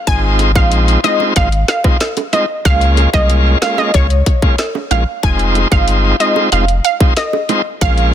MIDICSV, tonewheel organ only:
0, 0, Header, 1, 2, 480
1, 0, Start_track
1, 0, Key_signature, -4, "minor"
1, 0, Tempo, 645161
1, 54, Time_signature, 4, 2, 24, 8
1, 6057, End_track
2, 0, Start_track
2, 0, Title_t, "Tonewheel organ"
2, 0, Program_c, 0, 16
2, 52, Note_on_c, 0, 56, 93
2, 53, Note_on_c, 0, 60, 87
2, 55, Note_on_c, 0, 63, 89
2, 56, Note_on_c, 0, 65, 107
2, 384, Note_off_c, 0, 56, 0
2, 385, Note_off_c, 0, 60, 0
2, 385, Note_off_c, 0, 63, 0
2, 386, Note_off_c, 0, 65, 0
2, 412, Note_on_c, 0, 56, 83
2, 414, Note_on_c, 0, 60, 74
2, 415, Note_on_c, 0, 63, 72
2, 417, Note_on_c, 0, 65, 87
2, 744, Note_off_c, 0, 56, 0
2, 745, Note_off_c, 0, 60, 0
2, 745, Note_off_c, 0, 63, 0
2, 746, Note_off_c, 0, 65, 0
2, 771, Note_on_c, 0, 56, 76
2, 772, Note_on_c, 0, 60, 65
2, 773, Note_on_c, 0, 63, 67
2, 775, Note_on_c, 0, 65, 78
2, 993, Note_off_c, 0, 56, 0
2, 994, Note_off_c, 0, 60, 0
2, 994, Note_off_c, 0, 63, 0
2, 995, Note_off_c, 0, 65, 0
2, 1010, Note_on_c, 0, 56, 89
2, 1012, Note_on_c, 0, 60, 80
2, 1013, Note_on_c, 0, 63, 84
2, 1015, Note_on_c, 0, 65, 104
2, 1107, Note_off_c, 0, 56, 0
2, 1108, Note_off_c, 0, 60, 0
2, 1108, Note_off_c, 0, 63, 0
2, 1109, Note_off_c, 0, 65, 0
2, 1370, Note_on_c, 0, 56, 75
2, 1372, Note_on_c, 0, 60, 72
2, 1374, Note_on_c, 0, 63, 70
2, 1375, Note_on_c, 0, 65, 83
2, 1467, Note_off_c, 0, 56, 0
2, 1468, Note_off_c, 0, 60, 0
2, 1469, Note_off_c, 0, 63, 0
2, 1470, Note_off_c, 0, 65, 0
2, 1731, Note_on_c, 0, 56, 81
2, 1732, Note_on_c, 0, 60, 72
2, 1734, Note_on_c, 0, 63, 74
2, 1735, Note_on_c, 0, 65, 86
2, 1827, Note_off_c, 0, 56, 0
2, 1828, Note_off_c, 0, 60, 0
2, 1829, Note_off_c, 0, 63, 0
2, 1830, Note_off_c, 0, 65, 0
2, 1971, Note_on_c, 0, 56, 91
2, 1973, Note_on_c, 0, 58, 89
2, 1974, Note_on_c, 0, 61, 88
2, 1976, Note_on_c, 0, 65, 105
2, 2304, Note_off_c, 0, 56, 0
2, 2304, Note_off_c, 0, 58, 0
2, 2305, Note_off_c, 0, 61, 0
2, 2306, Note_off_c, 0, 65, 0
2, 2331, Note_on_c, 0, 56, 80
2, 2332, Note_on_c, 0, 58, 73
2, 2334, Note_on_c, 0, 61, 75
2, 2335, Note_on_c, 0, 65, 89
2, 2664, Note_off_c, 0, 56, 0
2, 2664, Note_off_c, 0, 58, 0
2, 2665, Note_off_c, 0, 61, 0
2, 2666, Note_off_c, 0, 65, 0
2, 2690, Note_on_c, 0, 56, 74
2, 2692, Note_on_c, 0, 58, 67
2, 2693, Note_on_c, 0, 61, 67
2, 2695, Note_on_c, 0, 65, 77
2, 2913, Note_off_c, 0, 56, 0
2, 2913, Note_off_c, 0, 58, 0
2, 2914, Note_off_c, 0, 61, 0
2, 2915, Note_off_c, 0, 65, 0
2, 2931, Note_on_c, 0, 56, 92
2, 2932, Note_on_c, 0, 58, 82
2, 2933, Note_on_c, 0, 61, 84
2, 2936, Note_on_c, 0, 65, 100
2, 3027, Note_off_c, 0, 56, 0
2, 3028, Note_off_c, 0, 58, 0
2, 3029, Note_off_c, 0, 61, 0
2, 3030, Note_off_c, 0, 65, 0
2, 3292, Note_on_c, 0, 56, 78
2, 3293, Note_on_c, 0, 58, 73
2, 3295, Note_on_c, 0, 61, 72
2, 3297, Note_on_c, 0, 65, 88
2, 3388, Note_off_c, 0, 56, 0
2, 3389, Note_off_c, 0, 58, 0
2, 3389, Note_off_c, 0, 61, 0
2, 3390, Note_off_c, 0, 65, 0
2, 3651, Note_on_c, 0, 56, 78
2, 3653, Note_on_c, 0, 58, 73
2, 3654, Note_on_c, 0, 61, 75
2, 3656, Note_on_c, 0, 65, 87
2, 3748, Note_off_c, 0, 56, 0
2, 3748, Note_off_c, 0, 58, 0
2, 3749, Note_off_c, 0, 61, 0
2, 3750, Note_off_c, 0, 65, 0
2, 3891, Note_on_c, 0, 56, 98
2, 3892, Note_on_c, 0, 60, 92
2, 3894, Note_on_c, 0, 63, 88
2, 3896, Note_on_c, 0, 65, 109
2, 4223, Note_off_c, 0, 56, 0
2, 4224, Note_off_c, 0, 60, 0
2, 4225, Note_off_c, 0, 63, 0
2, 4226, Note_off_c, 0, 65, 0
2, 4251, Note_on_c, 0, 56, 83
2, 4252, Note_on_c, 0, 60, 70
2, 4254, Note_on_c, 0, 63, 70
2, 4255, Note_on_c, 0, 65, 90
2, 4583, Note_off_c, 0, 56, 0
2, 4584, Note_off_c, 0, 60, 0
2, 4585, Note_off_c, 0, 63, 0
2, 4586, Note_off_c, 0, 65, 0
2, 4610, Note_on_c, 0, 56, 75
2, 4612, Note_on_c, 0, 60, 68
2, 4613, Note_on_c, 0, 63, 66
2, 4615, Note_on_c, 0, 65, 84
2, 4833, Note_off_c, 0, 56, 0
2, 4834, Note_off_c, 0, 60, 0
2, 4834, Note_off_c, 0, 63, 0
2, 4835, Note_off_c, 0, 65, 0
2, 4851, Note_on_c, 0, 56, 91
2, 4852, Note_on_c, 0, 60, 85
2, 4854, Note_on_c, 0, 63, 86
2, 4855, Note_on_c, 0, 65, 101
2, 4947, Note_off_c, 0, 56, 0
2, 4948, Note_off_c, 0, 60, 0
2, 4949, Note_off_c, 0, 63, 0
2, 4949, Note_off_c, 0, 65, 0
2, 5211, Note_on_c, 0, 56, 77
2, 5212, Note_on_c, 0, 60, 72
2, 5214, Note_on_c, 0, 63, 74
2, 5215, Note_on_c, 0, 65, 88
2, 5308, Note_off_c, 0, 56, 0
2, 5308, Note_off_c, 0, 60, 0
2, 5309, Note_off_c, 0, 63, 0
2, 5309, Note_off_c, 0, 65, 0
2, 5571, Note_on_c, 0, 56, 77
2, 5573, Note_on_c, 0, 60, 69
2, 5575, Note_on_c, 0, 63, 72
2, 5576, Note_on_c, 0, 65, 89
2, 5668, Note_off_c, 0, 56, 0
2, 5669, Note_off_c, 0, 60, 0
2, 5669, Note_off_c, 0, 63, 0
2, 5670, Note_off_c, 0, 65, 0
2, 5811, Note_on_c, 0, 56, 97
2, 5813, Note_on_c, 0, 58, 89
2, 5815, Note_on_c, 0, 61, 90
2, 5816, Note_on_c, 0, 65, 105
2, 6057, Note_off_c, 0, 56, 0
2, 6057, Note_off_c, 0, 58, 0
2, 6057, Note_off_c, 0, 61, 0
2, 6057, Note_off_c, 0, 65, 0
2, 6057, End_track
0, 0, End_of_file